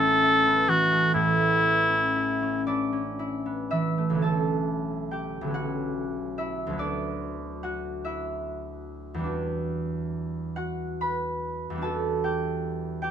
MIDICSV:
0, 0, Header, 1, 3, 480
1, 0, Start_track
1, 0, Key_signature, 2, "minor"
1, 0, Tempo, 903614
1, 610, Time_signature, 6, 3, 24, 8
1, 610, Tempo, 1025641
1, 2050, Tempo, 894188
1, 2530, Tempo, 832178
1, 4930, Tempo, 865801
1, 5890, Tempo, 804290
1, 7141, End_track
2, 0, Start_track
2, 0, Title_t, "Cor anglais"
2, 0, Program_c, 0, 69
2, 0, Note_on_c, 0, 69, 92
2, 368, Note_on_c, 0, 66, 75
2, 376, Note_off_c, 0, 69, 0
2, 603, Note_off_c, 0, 66, 0
2, 606, Note_on_c, 0, 64, 81
2, 1307, Note_off_c, 0, 64, 0
2, 7141, End_track
3, 0, Start_track
3, 0, Title_t, "Harp"
3, 0, Program_c, 1, 46
3, 0, Note_on_c, 1, 33, 60
3, 0, Note_on_c, 1, 45, 65
3, 0, Note_on_c, 1, 54, 50
3, 0, Note_on_c, 1, 57, 50
3, 0, Note_on_c, 1, 59, 50
3, 0, Note_on_c, 1, 61, 51
3, 0, Note_on_c, 1, 64, 53
3, 0, Note_on_c, 1, 66, 57
3, 116, Note_off_c, 1, 64, 0
3, 122, Note_on_c, 1, 64, 53
3, 239, Note_off_c, 1, 59, 0
3, 245, Note_on_c, 1, 59, 47
3, 358, Note_on_c, 1, 52, 44
3, 478, Note_off_c, 1, 57, 0
3, 484, Note_on_c, 1, 57, 43
3, 596, Note_off_c, 1, 33, 0
3, 602, Note_off_c, 1, 45, 0
3, 602, Note_on_c, 1, 33, 54
3, 608, Note_on_c, 1, 45, 58
3, 624, Note_off_c, 1, 52, 0
3, 627, Note_off_c, 1, 54, 0
3, 628, Note_off_c, 1, 66, 0
3, 715, Note_off_c, 1, 57, 0
3, 721, Note_on_c, 1, 57, 40
3, 836, Note_off_c, 1, 59, 0
3, 842, Note_on_c, 1, 59, 43
3, 950, Note_off_c, 1, 61, 0
3, 955, Note_on_c, 1, 61, 44
3, 1078, Note_off_c, 1, 64, 0
3, 1084, Note_on_c, 1, 64, 42
3, 1200, Note_off_c, 1, 61, 0
3, 1206, Note_on_c, 1, 61, 50
3, 1319, Note_off_c, 1, 64, 0
3, 1321, Note_on_c, 1, 74, 69
3, 1325, Note_on_c, 1, 62, 48
3, 1326, Note_on_c, 1, 64, 50
3, 1436, Note_off_c, 1, 61, 0
3, 1442, Note_on_c, 1, 61, 46
3, 1561, Note_off_c, 1, 64, 0
3, 1566, Note_on_c, 1, 64, 50
3, 1685, Note_off_c, 1, 59, 0
3, 1691, Note_on_c, 1, 59, 43
3, 1807, Note_on_c, 1, 76, 69
3, 1809, Note_off_c, 1, 64, 0
3, 1812, Note_on_c, 1, 52, 42
3, 1814, Note_on_c, 1, 64, 48
3, 1929, Note_off_c, 1, 57, 0
3, 1935, Note_on_c, 1, 57, 44
3, 1990, Note_on_c, 1, 35, 42
3, 2005, Note_on_c, 1, 50, 34
3, 2007, Note_off_c, 1, 59, 0
3, 2013, Note_on_c, 1, 59, 36
3, 2024, Note_off_c, 1, 61, 0
3, 2029, Note_on_c, 1, 61, 34
3, 2048, Note_on_c, 1, 81, 68
3, 2057, Note_on_c, 1, 69, 57
3, 2067, Note_off_c, 1, 33, 0
3, 2068, Note_off_c, 1, 76, 0
3, 2070, Note_off_c, 1, 45, 0
3, 2071, Note_off_c, 1, 52, 0
3, 2072, Note_off_c, 1, 64, 0
3, 2527, Note_on_c, 1, 79, 61
3, 2535, Note_on_c, 1, 67, 46
3, 2692, Note_off_c, 1, 35, 0
3, 2699, Note_on_c, 1, 35, 42
3, 2710, Note_off_c, 1, 50, 0
3, 2717, Note_on_c, 1, 50, 35
3, 2726, Note_off_c, 1, 59, 0
3, 2733, Note_on_c, 1, 59, 32
3, 2745, Note_off_c, 1, 61, 0
3, 2752, Note_on_c, 1, 61, 33
3, 2773, Note_on_c, 1, 78, 65
3, 2780, Note_on_c, 1, 66, 52
3, 2942, Note_off_c, 1, 79, 0
3, 3257, Note_on_c, 1, 76, 59
3, 3265, Note_on_c, 1, 64, 46
3, 3365, Note_off_c, 1, 74, 0
3, 3371, Note_off_c, 1, 62, 0
3, 3422, Note_on_c, 1, 38, 42
3, 3440, Note_on_c, 1, 54, 33
3, 3451, Note_off_c, 1, 59, 0
3, 3458, Note_on_c, 1, 59, 36
3, 3479, Note_off_c, 1, 35, 0
3, 3480, Note_off_c, 1, 64, 0
3, 3487, Note_on_c, 1, 64, 35
3, 3488, Note_off_c, 1, 50, 0
3, 3494, Note_on_c, 1, 74, 67
3, 3504, Note_on_c, 1, 62, 49
3, 3506, Note_off_c, 1, 61, 0
3, 3519, Note_off_c, 1, 67, 0
3, 3666, Note_off_c, 1, 76, 0
3, 3971, Note_off_c, 1, 78, 0
3, 3977, Note_off_c, 1, 66, 0
3, 3978, Note_on_c, 1, 78, 60
3, 3984, Note_on_c, 1, 66, 45
3, 4122, Note_off_c, 1, 57, 0
3, 4218, Note_on_c, 1, 76, 56
3, 4220, Note_off_c, 1, 64, 0
3, 4226, Note_on_c, 1, 64, 45
3, 4261, Note_off_c, 1, 81, 0
3, 4271, Note_off_c, 1, 69, 0
3, 4851, Note_on_c, 1, 40, 41
3, 4870, Note_on_c, 1, 55, 37
3, 4875, Note_off_c, 1, 59, 0
3, 4882, Note_on_c, 1, 59, 35
3, 4895, Note_off_c, 1, 62, 0
3, 4902, Note_on_c, 1, 62, 36
3, 4908, Note_off_c, 1, 66, 0
3, 4911, Note_off_c, 1, 38, 0
3, 4915, Note_on_c, 1, 66, 34
3, 5633, Note_off_c, 1, 78, 0
3, 5639, Note_off_c, 1, 66, 0
3, 5639, Note_on_c, 1, 78, 62
3, 5646, Note_on_c, 1, 66, 46
3, 5660, Note_off_c, 1, 54, 0
3, 5712, Note_off_c, 1, 74, 0
3, 5889, Note_on_c, 1, 83, 70
3, 5895, Note_on_c, 1, 71, 52
3, 6294, Note_off_c, 1, 40, 0
3, 6301, Note_on_c, 1, 40, 46
3, 6308, Note_off_c, 1, 55, 0
3, 6315, Note_on_c, 1, 55, 38
3, 6326, Note_off_c, 1, 59, 0
3, 6333, Note_on_c, 1, 59, 36
3, 6339, Note_off_c, 1, 62, 0
3, 6346, Note_on_c, 1, 62, 37
3, 6361, Note_off_c, 1, 66, 0
3, 6368, Note_on_c, 1, 66, 37
3, 6375, Note_on_c, 1, 81, 66
3, 6383, Note_on_c, 1, 69, 55
3, 6400, Note_off_c, 1, 76, 0
3, 6405, Note_off_c, 1, 64, 0
3, 6622, Note_on_c, 1, 79, 67
3, 6628, Note_on_c, 1, 67, 51
3, 6782, Note_off_c, 1, 81, 0
3, 7081, Note_off_c, 1, 79, 0
3, 7088, Note_on_c, 1, 79, 66
3, 7091, Note_off_c, 1, 67, 0
3, 7098, Note_on_c, 1, 67, 49
3, 7141, Note_off_c, 1, 40, 0
3, 7141, Note_off_c, 1, 55, 0
3, 7141, Note_off_c, 1, 59, 0
3, 7141, Note_off_c, 1, 62, 0
3, 7141, Note_off_c, 1, 66, 0
3, 7141, Note_off_c, 1, 67, 0
3, 7141, Note_off_c, 1, 69, 0
3, 7141, Note_off_c, 1, 71, 0
3, 7141, Note_off_c, 1, 78, 0
3, 7141, Note_off_c, 1, 79, 0
3, 7141, Note_off_c, 1, 83, 0
3, 7141, End_track
0, 0, End_of_file